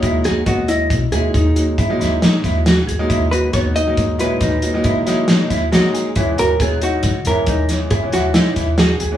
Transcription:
<<
  \new Staff \with { instrumentName = "Hollow-body jazz guitar" } { \time 7/4 \key fes \lydian \tempo 4 = 137 r8 gis'8 fis'8 e'4 gis'2 r2 r8 | r8 b'8 des''8 dis''4 b'2 r2 r8 | r8 bes'8 aes'8 ges'4 bes'4 r8 aes'8 ges'8 fes'4 aes'4 | }
  \new Staff \with { instrumentName = "Clean electric guitar" } { \time 7/4 \key fes \lydian e'8 fis'8 b8 dis''4 e'8 dis'4 e'8 e'8 dis'8 e'8 fis'8 gis'8 | e'8 fis'8 b8 dis'4 e'8 dis'4 e'8 e'8 dis'8 e'8 fis'8 gis'8 | fes'8 ges'8 ces'8 ees'4 fes'8 ees'4 fes'8 fes'8 ees'8 fes'8 ges'8 aes'8 | }
  \new Staff \with { instrumentName = "Grand piano" } { \time 7/4 \key fes \lydian <fis gis ais dis'>8. r16 <fis gis ais dis''>4~ <fis gis ais dis''>16 r16 <fis gis ais dis'>8. r16 <fis gis ais dis'>8 r16 <fis gis ais dis'>4.~ <fis gis ais dis'>16 r8. <fis gis ais dis'>16~ | <fis gis ais dis'>16 r16 <fis gis ais dis'>8 <fis gis ais dis'>8 r16 <fis gis ais dis'>8 r16 <ais, fis gis dis'>8. r16 <fis gis ais dis'>16 <fis gis ais dis'>8 r16 <fis gis ais dis'>4~ <fis gis ais dis'>16 r16 <fis gis ais dis'>8. r16 | <fes aes ces' des'>8. r16 <aes ces' des' fes'>4~ <aes ces' des' fes'>16 r16 <fes aes ces' des'>8. r16 <fes aes ces' des'>8 r16 <fes aes ces' des'>4.~ <fes aes ces' des'>16 r8. <fes aes ces' des'>16 | }
  \new Staff \with { instrumentName = "Upright bass" } { \clef bass \time 7/4 \key fes \lydian dis,8 dis,8 dis,4 b,,16 r16 dis,8 dis,4 dis8 dis,8 r8 dis,4 dis,8 | dis,4 dis,4 dis,4 dis,4 dis4. dis,8 r4 | ees,8 ees,8 ees,4 des,16 r16 fes,8 ees,4 ees8 ees,8 r8 ees,4 ees,8 | }
  \new DrumStaff \with { instrumentName = "Drums" } \drummode { \time 7/4 <hh bd>8 <hh sn>8 <hh bd>8 hh8 <hh bd>8 hh8 <hh bd>8 hh8 <hh bd>8 <hh sn>8 <hh sn>8 <hh bd sn>8 <hh sn>8 hh8 | <hh bd>8 hh8 <hh bd sn>8 hh8 <hh bd>8 hh8 <hh bd sn>8 hh8 <hh bd>8 <hh sn>8 <hh sn>8 <hh bd sn>8 <hh sn>8 hh8 | <hh bd>8 hh8 <hh bd>8 hh8 <hh bd sn>8 hh8 <hh bd>8 <hh sn>8 <hh bd>8 <hh sn>8 <hh sn>8 <hh bd sn>8 <hh sn>8 hh8 | }
>>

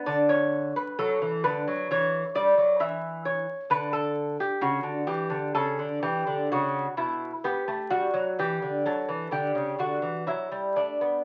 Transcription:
<<
  \new Staff \with { instrumentName = "Lute" } { \time 4/4 \key g \lydian \tempo 4 = 64 d''16 cis''8 b'16 a'8 b'8 cis''8 d''8 e''8 cis''8 | b'16 a'8 g'16 fis'8 g'8 a'8 g'8 fis'8 e'8 | g'8 fis'8 g'8 a'8 g'8 fis'8 e'8 d'8 | }
  \new Staff \with { instrumentName = "Lute" } { \clef bass \time 4/4 \key g \lydian d4 fis16 e16 d16 fis16 e8 g16 fis16 e4 | d4 cis16 d16 e16 d16 cis16 d16 e16 d16 cis8 b,8 | b16 a16 g16 fis16 e16 d16 fis16 e16 d16 cis16 d16 e16 fis16 g16 a16 b16 | }
>>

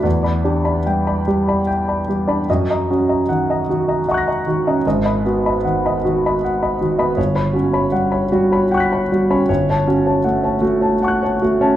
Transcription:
<<
  \new Staff \with { instrumentName = "Grand piano" } { \time 3/4 \key fis \phrygian \tempo 4 = 77 << { r2. | r2 <dis'' cis''' fis''' ais'''>4 | r2. | r2 <g'' cis''' fis''' b'''>4 |
r2 <a'' cis''' fis'''>4 | } \\ { d''16 <d'' b''>16 g'16 <d'' b''>16 g''16 <d'' b''>16 g'16 <d'' b''>16 g''16 <d'' b''>16 g'16 <d'' b''>16 | dis''16 <dis'' ais''>16 fis'16 <dis'' ais''>16 fis''16 <dis'' ais''>16 fis'16 <dis'' ais''>16 fis''16 <dis'' ais''>16 fis'16 <dis'' ais''>16 | dis''16 <dis'' b''>16 fis'16 <dis'' b''>16 fis''16 <dis'' b''>16 fis'16 <dis'' b''>16 fis''16 <dis'' b''>16 fis'16 <dis'' b''>16 | cis''16 <cis'' b''>16 fis'16 <cis'' b''>16 fis''16 <cis'' b''>16 fis'16 <cis'' b''>16 fis''16 <cis'' b''>16 fis'16 <cis'' b''>16 |
cis''16 <cis'' a''>16 fis'16 <cis'' a''>16 fis''16 <cis'' a''>16 fis'16 <cis'' a''>16 fis''16 <cis'' a''>16 fis'16 <cis'' a''>16 | } >> }
  \new Staff \with { instrumentName = "Grand piano" } { \clef bass \time 3/4 \key fis \phrygian e,8 d'8 g8 g8 r8 g16 d'16 | fis,8 cis'8 dis8 dis8 r8 dis16 cis'16 | gis,,8 b8 dis8 dis8 r8 dis16 b16 | g,,8 cis'8 g8 g8 r8 g16 cis'16 |
g,,8 cis'8 a8 a8 r8 a16 cis'16 | }
>>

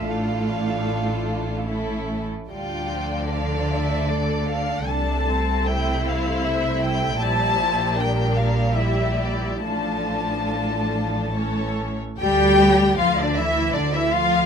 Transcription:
<<
  \new Staff \with { instrumentName = "Violin section" } { \time 3/4 \key d \minor \tempo 4 = 75 f''2 r4 | g''4 f''8 e''8 d''8 f''8 | a''4 g''8 f''8 e''8 g''8 | a''4 g''8 f''8 e''8 d''8 |
a''2~ a''8 r8 | g''4 f''16 d''16 e''8 d''16 e''16 f''8 | }
  \new Staff \with { instrumentName = "Violin section" } { \time 3/4 \key d \minor << { a'2 a'8. r16 | d''2. | a'4 c''2 | c''4 bes'4 g'4 |
a'2 cis''8. r16 | g''4 f''16 d''16 e''8 d''16 e''16 f''8 | } \\ { f'2 e'8. r16 | f'4 a'2~ | a'4 e'2 | g'4 bes'2 |
f'2 a'8. r16 | r2. | } >> }
  \new Staff \with { instrumentName = "Viola section" } { \time 3/4 \key d \minor << { d'2 cis'8. r16 | d'2. | d'8 c'8 e'2 | e'4 d'4 e'4 |
d'2 cis'8. r16 | g'4 f'16 d'16 e'8 d'16 e'16 f'8 | } \\ { a2 a8. r16 | g8 f8 f4 a4 | a2. | g8 f8 g2 |
f2 e8. r16 | r2. | } >> }
  \new Staff \with { instrumentName = "Cello section" } { \clef bass \time 3/4 \key d \minor a,2~ a,8. r16 | d2. | c2. | bes,2. |
a,2~ a,8. r16 | g4 f16 d16 e8 d16 e16 f8 | }
  \new Staff \with { instrumentName = "Double bass section" } { \clef bass \time 3/4 \key d \minor a,,2~ a,,8. r16 | d,2. | c,2. | bes,,2. |
a,,2~ a,,8. r16 | d,4 d,4 d,4 | }
>>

